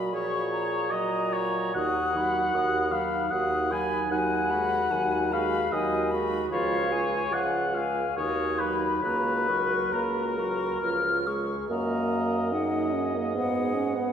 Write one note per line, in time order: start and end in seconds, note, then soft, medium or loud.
0.00 1.71 A#2 soft
0.00 0.14 F#3 soft
0.00 0.15 B5 soft
0.12 0.93 F3 soft
0.12 0.91 G#4 soft
0.12 0.92 C#5 medium
0.12 0.50 C#6 soft
0.51 0.90 A#5 soft
0.90 1.75 F#3 soft
0.90 1.75 F#4 soft
0.90 1.34 D#5 medium
0.90 1.74 A#5 soft
1.32 1.74 C#5 medium
1.74 2.45 D#2 soft
1.74 2.16 D#3 soft
1.74 2.18 F#4 soft
1.74 2.93 F#5 medium
1.74 2.18 D#6 soft
2.15 2.55 F#3 soft
2.15 2.56 D#4 soft
2.15 2.56 B5 soft
2.54 3.23 D#2 soft
2.54 2.94 D#3 soft
2.54 2.95 F#4 soft
2.54 2.94 D#6 soft
2.92 3.32 F#3 soft
2.92 3.31 D#4 soft
2.92 3.33 F5 medium
2.92 3.30 B5 soft
3.31 4.01 D#2 soft
3.31 3.73 D#3 soft
3.31 3.73 F#4 soft
3.31 3.73 F#5 medium
3.31 3.72 D#6 soft
3.71 4.10 F#3 soft
3.71 4.10 D#4 soft
3.71 4.11 G#5 medium
3.71 4.10 B5 soft
4.10 4.82 D#2 soft
4.10 4.52 F#3 soft
4.10 4.53 D#4 soft
4.10 5.30 F#5 medium
4.10 4.52 G#5 soft
4.50 4.93 G#3 soft
4.50 4.93 F#4 soft
4.50 4.93 B5 soft
4.91 5.64 D#2 medium
4.91 5.34 F#3 soft
4.91 5.33 D#4 soft
4.91 5.34 G#5 soft
5.32 5.72 G#3 soft
5.32 5.71 F#4 soft
5.32 5.74 F5 medium
5.32 5.73 B5 soft
5.71 6.43 D#2 medium
5.71 6.14 F#3 soft
5.71 6.14 D#4 soft
5.71 6.12 D#5 medium
5.71 6.13 G#5 soft
6.11 6.51 G#3 soft
6.11 6.51 F#4 soft
6.11 6.50 B5 soft
6.51 7.23 C#2 soft
6.51 6.94 F3 soft
6.51 6.93 F4 soft
6.51 7.35 C#5 medium
6.51 6.93 F5 soft
6.92 7.35 G#3 soft
6.92 7.33 G#4 soft
6.92 7.35 G#5 soft
7.31 8.07 C#2 soft
7.31 7.77 F3 soft
7.31 7.76 F4 soft
7.31 7.57 F5 soft
7.31 7.76 F#5 medium
7.74 8.05 G#3 soft
7.74 8.04 G#4 soft
7.74 8.16 F5 medium
7.74 8.18 G#5 soft
8.16 8.93 D#2 soft
8.16 8.62 D#3 soft
8.16 8.60 F#4 soft
8.16 8.60 C#5 medium
8.16 8.62 D#6 soft
8.59 9.04 F#3 soft
8.59 9.02 D#4 soft
8.59 9.03 B4 soft
8.59 9.03 B5 soft
9.03 9.82 C#2 soft
9.03 9.50 A#3 soft
9.03 9.48 F#4 soft
9.03 9.94 B4 medium
9.03 9.50 A#5 soft
9.47 9.95 F#3 soft
9.47 9.93 A#4 soft
9.47 9.95 C#6 soft
9.92 10.72 C#2 soft
9.92 10.40 A#3 soft
9.92 10.39 F#4 soft
9.92 11.27 A#4 soft
9.92 10.41 A#5 soft
10.37 10.82 F#3 soft
10.37 10.82 A#4 soft
10.37 10.82 C#6 soft
10.82 11.60 C#2 soft
10.82 11.29 F3 soft
10.82 11.29 F4 soft
10.82 11.29 F6 soft
11.27 11.69 G#3 soft
11.27 11.69 G#4 soft
11.27 11.69 C#6 soft
11.69 13.37 F#2 soft
11.69 12.53 A#3 medium
11.69 12.48 A#4 soft
11.69 14.12 D#5 soft
11.69 12.48 A#5 soft
12.52 12.95 D#4 medium
12.52 14.12 G#4 soft
12.52 13.04 F#5 soft
12.94 13.17 C#4 medium
13.16 13.34 A#3 medium
13.35 14.12 G#2 soft
13.35 13.76 B3 medium
13.35 14.12 F#5 soft
13.74 13.97 C#4 medium
13.96 14.12 B3 medium